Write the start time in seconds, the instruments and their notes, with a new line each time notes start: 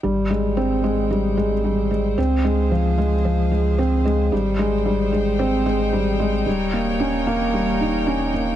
0.03 sub bass G#1, felt piano G3, string quartet D#4 C5 G5
0.30 felt piano G#3
0.57 felt piano C4
0.84 felt piano G#3
1.10 felt piano G3
1.37 felt piano G#3
1.64 felt piano G3
1.91 felt piano G#3
2.18 sub bass C#2, felt piano C4, string quartet G#4 F5
2.44 felt piano G#3
2.71 felt piano F3
2.98 felt piano G#3
3.25 felt piano F3
3.52 felt piano G#3
3.78 felt piano C4
4.05 felt piano G#3
4.31 sub bass G#1, felt piano G3, string quartet D#4 C5 G5
4.59 felt piano G#3
4.86 felt piano G3
5.13 felt piano G#3
5.39 felt piano C4
5.66 felt piano G#3
5.93 felt piano G3
6.19 felt piano G#3
6.46 sub bass D#1, felt piano G3, string quartet A#4 C#5
6.73 felt piano A#3
7.00 felt piano C#4
7.27 felt piano A#3
7.54 felt piano G3
7.80 felt piano D#4
8.07 felt piano C#4
8.34 felt piano A#3